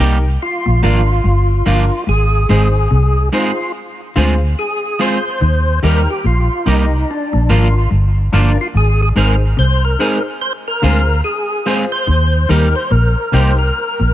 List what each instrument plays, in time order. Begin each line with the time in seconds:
0.00 fingered electric bass C2, clean electric guitar C3 G3 A#3 D#4 G4, grand piano D#4 G4 A#4
0.42 tonewheel organ F4
0.66 fingered electric bass A#1, clean electric guitar A#2
0.82 fingered electric bass G#1, clean electric guitar G#2 F3 A#3 D4 F4, grand piano D4 F4 A#4, tonewheel organ F4
1.24 fingered electric bass G1, clean electric guitar G2
1.66 fingered electric bass G1, clean electric guitar G2 F3 A#3 D4 F4, grand piano D4 F4 A#4
2.07 fingered electric bass G#1, clean electric guitar G#2, tonewheel organ G#4
2.49 fingered electric bass G#1, clean electric guitar G#2 G#3 C4 D#4 G#4, grand piano D#4 G#4 C5
2.91 fingered electric bass C2, clean electric guitar C3
3.32 clean electric guitar G#3 C4 D#4 G#4, grand piano D#4 G#4 C5, tonewheel organ F4
4.16 fingered electric bass D2, clean electric guitar D3 G#3 C4 F4 G#4, grand piano F4 G#4 C5
4.59 tonewheel organ G#4
4.99 clean electric guitar G#3 C4 F4 G#4, grand piano F4 G#4 C5, tonewheel organ C5
5.41 fingered electric bass D#2, clean electric guitar D#3
5.82 fingered electric bass D#2, clean electric guitar D#3 G3 A#3 D#4 G4, grand piano D#4 G4 A#4, tonewheel organ A#4
6.10 tonewheel organ G4
6.24 fingered electric bass A#1, clean electric guitar A#2, tonewheel organ F4
6.66 fingered electric bass C2, clean electric guitar C3 G3 A#3 D#4 G4, grand piano D#4 G4 A#4, tonewheel organ D#4
7.11 tonewheel organ D4
7.33 fingered electric bass A#1, clean electric guitar A#2
7.49 fingered electric bass G#1, clean electric guitar G#2 F3 A#3 D4 F4, grand piano D4 F4 A#4, tonewheel organ F4
7.91 fingered electric bass G1, clean electric guitar G2
8.32 fingered electric bass G1, clean electric guitar G2 F3 A#3 D4 F4, grand piano D4 F4 A#4, tonewheel organ D4
8.61 tonewheel organ F4
8.74 fingered electric bass G#1, clean electric guitar G#2, tonewheel organ G#4
9.03 tonewheel organ G#4
9.16 fingered electric bass G#1, clean electric guitar G#2 G#3 C4 D#4 G#4, grand piano D#4 G#4 C5, tonewheel organ A#4
9.57 fingered electric bass C2, clean electric guitar C3, tonewheel organ C5
9.85 tonewheel organ A#4
9.99 clean electric guitar G#3 C4 D#4 G#4, grand piano D#4 G#4 C5
10.41 tonewheel organ C5
10.68 tonewheel organ A#4
10.82 fingered electric bass D2, clean electric guitar D3 G#3 C4 F4 G#4, grand piano F4 G#4 C5
11.24 tonewheel organ G#4
11.66 clean electric guitar G#3 C4 F4 G#4, grand piano F4 G#4 C5, tonewheel organ C5
11.92 tonewheel organ C5
12.07 fingered electric bass D#2, clean electric guitar D#3
12.49 fingered electric bass D#2, clean electric guitar D#3 G3 A#3 D#4 G4, grand piano D#4 G4 A#4, tonewheel organ A#4
12.76 tonewheel organ C5
12.91 fingered electric bass A#1, clean electric guitar A#2, tonewheel organ A#4
13.32 fingered electric bass C2, clean electric guitar C3 G3 A#3 D#4 G4, grand piano D#4 G4 A#4, tonewheel organ C5
13.59 tonewheel organ A#4
14.00 fingered electric bass A#1, clean electric guitar A#2